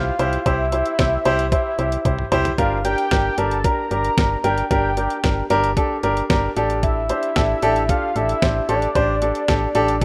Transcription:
Already playing: fm bass C2, grand piano E4 G4 C5, analog synth lead F5
0.19 fm bass C2, grand piano E4 G4 C5, closed hi-hat
0.33 closed hi-hat
0.46 fm bass C2, grand piano E4 G4 C5, analog synth lead E5, kick, closed hi-hat
0.72 grand piano E4 G4 C5, closed hi-hat
0.86 closed hi-hat
0.99 fm bass C2, grand piano E4 G4 C5, kick, snare, closed hi-hat
1.25 fm bass C2, grand piano E4 G4 C5, closed hi-hat
1.39 closed hi-hat
1.52 grand piano E4 G4 C5, analog synth lead E5, kick, closed hi-hat
1.79 fm bass C2, grand piano E4 G4 C5, closed hi-hat
1.92 closed hi-hat
2.05 fm bass C2, grand piano E4 G4 C5, kick, closed hi-hat, high tom
2.19 mid tom
2.32 fm bass C2, grand piano E4 G4 C5, closed hi-hat, mid tom
2.45 closed hi-hat, floor tom
2.58 fm bass G1, grand piano D4 G4 A#4, analog synth lead F5, kick, closed hi-hat
2.85 grand piano D4 G4 A#4, analog synth lead G5, closed hi-hat
2.98 closed hi-hat
3.11 fm bass G1, grand piano D4 G4 A#4, kick, snare, closed hi-hat
3.38 fm bass G1, grand piano D4 G4 A#4, analog synth lead A5, closed hi-hat
3.51 closed hi-hat
3.64 grand piano D4 G4 A#4, analog synth lead A#5, kick, closed hi-hat
3.91 fm bass G1, grand piano D4 G4 A#4, closed hi-hat
4.05 closed hi-hat
4.18 fm bass G1, grand piano D4 G4 A#4, kick, snare, closed hi-hat
4.44 fm bass G1, grand piano D4 G4 A#4, analog synth lead G5, closed hi-hat
4.58 closed hi-hat
4.71 fm bass G1, grand piano D4 G4 A#4, analog synth lead G5, kick, closed hi-hat
4.97 grand piano D4 G4 A#4, closed hi-hat
5.10 closed hi-hat
5.24 fm bass G1, grand piano D4 G4 A#4, kick, snare, closed hi-hat
5.50 fm bass G1, grand piano D4 G4 A#4, closed hi-hat
5.64 closed hi-hat
5.77 grand piano D4 G4 A4, kick, closed hi-hat
6.03 fm bass G1, grand piano D4 G4 A#4, closed hi-hat
6.17 closed hi-hat
6.30 fm bass G1, grand piano D4 G4 A#4 A#5, kick, snare, closed hi-hat
6.57 fm bass A1, grand piano D4 G4 A4 D5, closed hi-hat
6.70 closed hi-hat
6.83 analog synth lead E5, kick, closed hi-hat
7.09 grand piano D4 G4 C5, closed hi-hat
7.23 closed hi-hat
7.36 fm bass A1, grand piano D4 G4 A4, kick, snare, closed hi-hat
7.62 fm bass A1, grand piano D4 G4 A4, closed hi-hat
7.76 closed hi-hat
7.89 grand piano D4 G4 A4, analog synth lead F5, kick, closed hi-hat
8.16 fm bass A1, grand piano D4 G4 A4, analog synth lead E5, closed hi-hat
8.29 closed hi-hat
8.42 fm bass A1, grand piano D4 G4 C5, kick, snare, closed hi-hat
8.69 fm bass A1, grand piano D4 G4 A4, analog synth lead D5, closed hi-hat
8.82 closed hi-hat
8.95 fm bass A1, grand piano D4 G4 C5, kick, closed hi-hat
9.22 grand piano D4 G4 A4, closed hi-hat
9.35 closed hi-hat
9.48 fm bass A1, grand piano D4 G4 A4, kick, snare, closed hi-hat
9.75 fm bass A1, grand piano D4 G4 A4, closed hi-hat
9.88 closed hi-hat
10.02 kick

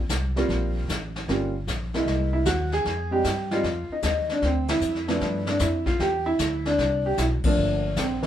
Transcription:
0.09 upright bass C2, kick, snare, hi-hat pedal
0.36 grand piano G3 A#3 C4 F4, snare
0.49 upright bass A#1, brush sweep, kick, snare
0.89 upright bass A1, kick, snare, hi-hat pedal
1.16 snare
1.28 upright bass G1, grand piano G3 A#3 C#4 F4, brush sweep, kick, snare
1.67 upright bass A#1, kick, snare, hi-hat pedal
1.94 grand piano G#3 A#3 D#4 E4, snare
2.06 upright bass C2, brush sweep, kick, snare
2.33 grand piano E4
2.45 upright bass D#2, grand piano F#4, kick, snare, hi-hat pedal
2.72 grand piano G#4, snare
2.85 upright bass F2, brush sweep, kick, snare
3.11 grand piano G3 G#3 C4 D#4 G4
3.24 upright bass G2, kick, snare, hi-hat pedal
3.51 grand piano G3 G#3 C4 D#4 F4, snare
3.63 upright bass F2, brush sweep, kick, snare
3.89 grand piano D#4, muted upright bass stroke
4.02 upright bass D#2, grand piano D#4, kick, snare, hi-hat pedal
4.29 grand piano D4, snare
4.42 upright bass D2, grand piano C4, brush sweep, kick, snare
4.68 grand piano E4, snare, ride
4.80 upright bass F2, hi-hat pedal
4.95 snare
5.08 grand piano F3 A3 B3 D4, snare
5.20 upright bass G2, brush sweep, kick, snare
5.47 grand piano D4, snare
5.59 upright bass F2, grand piano E4, kick, snare, hi-hat pedal
5.86 grand piano F4, kick, snare
5.99 upright bass E2, grand piano G4, brush sweep, kick, snare
6.26 grand piano E4
6.39 upright bass D2, kick, snare, hi-hat pedal
6.65 grand piano D4, snare
6.78 upright bass C2, brush sweep, kick, snare
7.06 grand piano G4
7.17 upright bass B1, grand piano E4, kick, snare, hi-hat pedal
7.44 grand piano F3 A3 A#3 D4, muted upright bass stroke, kick, crash
7.57 upright bass G1, brush sweep
7.96 upright bass A#1, grand piano C4, kick, snare, hi-hat pedal
8.22 grand piano E3 G#3, snare

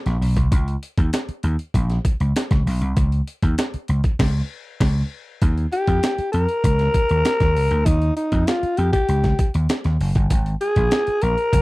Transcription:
0.06 slap bass A#1, snare, closed hi-hat
0.21 slap bass B1, open hi-hat
0.36 slap bass C2, kick, closed hi-hat
0.52 slap bass C#2, kick, closed hi-hat
0.68 closed hi-hat
0.83 closed hi-hat
0.97 slap bass D#2, kick, closed hi-hat
1.13 snare, closed hi-hat
1.29 muted slap bass stroke, closed hi-hat
1.43 slap bass D#2, closed hi-hat
1.59 closed hi-hat
1.74 slap bass A#1, kick, closed hi-hat
1.90 snare, closed hi-hat
2.05 kick, closed hi-hat
2.20 slap bass C#2, closed hi-hat
2.36 snare, closed hi-hat
2.51 slap bass C#2, kick, snare, closed hi-hat
2.66 slap bass B1, open hi-hat
2.81 slap bass C2, closed hi-hat
2.97 slap bass C#2, kick, closed hi-hat
3.12 closed hi-hat
3.27 closed hi-hat
3.42 slap bass D#2, kick, closed hi-hat
3.58 snare, closed hi-hat
3.74 muted slap bass stroke, closed hi-hat
3.88 slap bass C#2, closed hi-hat
4.04 kick, closed hi-hat
4.19 slap bass C#2, kick, snare, crash
4.80 slap bass C#2, kick, snare, crash
5.42 slap bass D#2, kick, closed hi-hat
5.58 closed hi-hat
5.72 alto saxophone G4, closed hi-hat
5.87 slap bass F2, kick, closed hi-hat
6.03 snare, closed hi-hat
6.18 muted slap bass stroke, closed hi-hat
6.32 slap bass F2, alto saxophone A#4, closed hi-hat
6.49 closed hi-hat
6.64 slap bass C#2, kick, closed hi-hat
6.79 snare, closed hi-hat
6.94 kick, closed hi-hat
7.09 slap bass D#2, closed hi-hat
7.25 snare, closed hi-hat
7.40 slap bass D#2, kick, snare, closed hi-hat
7.56 slap bass C#2, open hi-hat
7.71 slap bass D2, closed hi-hat
7.86 slap bass D#2, alto saxophone D#4, kick, closed hi-hat
8.02 closed hi-hat
8.16 alto saxophone D#4, closed hi-hat
8.32 slap bass F2, kick, closed hi-hat
8.47 alto saxophone F4, snare, closed hi-hat
8.63 muted slap bass stroke, closed hi-hat
8.77 slap bass F2, alto saxophone G4, closed hi-hat
8.92 alto saxophone G4, kick, closed hi-hat
9.09 slap bass C#2, closed hi-hat
9.24 kick, snare, closed hi-hat
9.39 kick, closed hi-hat
9.54 slap bass D#2, closed hi-hat
9.69 snare, closed hi-hat
9.84 slap bass D#2, snare, closed hi-hat
10.00 slap bass F#1, open hi-hat
10.15 slap bass G1, kick, closed hi-hat
10.30 slap bass G#1, kick, closed hi-hat
10.46 closed hi-hat
10.61 alto saxophone G#4, closed hi-hat
10.76 slap bass A#1, kick, closed hi-hat
10.91 snare, closed hi-hat
11.07 muted slap bass stroke, closed hi-hat
11.22 slap bass A#1, alto saxophone A#4, closed hi-hat
11.38 closed hi-hat
11.53 slap bass F#1, kick, closed hi-hat

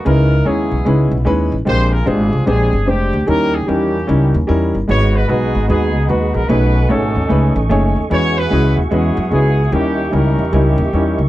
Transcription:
0.05 upright bass C#2, upright piano C#3 G#3 C#4 D#4 E4 B4, horn section D#4 E4 A#4
0.45 upright piano G#3 C#4 D#4 E4 C#5, horn section B3 E4 G#4
0.71 upright bass B1
0.85 upright bass C#2, upright piano G#3 C#4 D#4 E4 B4
1.11 upright bass B1
1.25 upright bass D#2, upright piano G#3 C#4 D#4 E4 B4
1.52 upright bass A1
1.65 upright bass A#1, upright piano A#2 G#3 C4 D4 G4 A#4, horn section F4 G#4 C5
1.92 horn section A#4
2.06 upright bass G#1, upright piano G#3 C4 D4 G4 C5, horn section C4 D4 G#4
2.33 upright bass C2
2.46 upright bass A#1, upright piano G#3 C4 D4 G4 C5, horn section C4 D4 G#4
2.73 upright bass G1
2.86 upright bass F1, upright piano G#3 C4 D4 G4 C5, horn section C4 D4 G4
3.13 upright bass D2
3.26 upright bass D#2, upright piano D#3 G3 C#4 D#4 E4 A#4, horn section C#4 G4 A#4
3.52 horn section G#4
3.67 upright bass E2, upright piano G3 C#4 D#4 E4 A#4, horn section A#3 C#4 G4
4.07 upright bass C#2, upright piano G3 C#4 D#4 E4 A#4
4.34 upright bass D#2
4.47 upright bass E2, upright piano G3 C#4 D#4 E4 A#4
4.75 upright bass G1
4.88 upright bass G#1, upright piano G#2 G#3 B3 D#4 F#4 B4, horn section F#4 C#5, tonewheel organ G#4 D#5 F#5 B5
5.14 horn section B4
5.28 upright bass B1, upright piano G#3 B3 D#4 F#4 B4, horn section B3 D#4 G#4
5.55 upright bass G#1
5.68 upright bass D#2, upright piano G#3 B3 D#4 F#4 B4, horn section B3 D#4 G#4
5.94 upright bass C#2
6.09 upright bass D#2, upright piano G#3 B3 D#4 F#4 B4, horn section F#4
6.34 upright bass A#1, horn section A#4
6.48 upright bass B1, upright piano B2 A3 C#4 D#4 G#4 B4, horn section D#4 F#4 B4, tonewheel organ A4 D#5 G#5 C#6
6.89 upright bass G#1, upright piano A3 C#4 D#4 G#4 C#5, horn section C#4 D#4 A4
7.16 upright bass D#2
7.29 upright bass C#2, upright piano A3 C#4 D#4 G#4 B4
7.56 upright bass A1
7.69 upright bass F#1, upright piano A3 C#4 D#4 G#4 C#5
7.96 upright bass D#2
8.10 upright bass E2, upright piano E3 G#3 C#4 E4 F#4 B4, horn section F#4 G#4 C#5, tonewheel organ G#4 E5 F#5 C#6
8.37 horn section F#4 G#4 B4
8.50 upright bass C#2, upright piano G#3 C#4 E4 F#4 G#4
8.77 upright bass D#2
8.91 upright bass E2, upright piano G#3 C#4 E4 F#4 B4, horn section B3 C#4 G#4
9.17 upright bass F#2
9.31 upright bass C#2, upright piano G#3 C#4 E4 F#4 B4, horn section B3 C#4 G#4
9.71 upright bass D#2, upright piano D#3 G3 C#4 D#4 E4 A#4, horn section A#3 C#4 G4, tonewheel organ G4 D#5 C#6
10.11 upright bass C#2, upright piano G3 C#4 D#4 E4 A#4, horn section C#4 G4 A#4
10.38 upright bass E2
10.52 upright bass C#2, upright piano G3 C#4 D#4 E4 A#4, horn section A#3 C#4 G4
10.78 upright bass D#2
10.93 upright bass E2, upright piano G3 C#4 D#4 E4 A#4
11.19 upright bass C#2

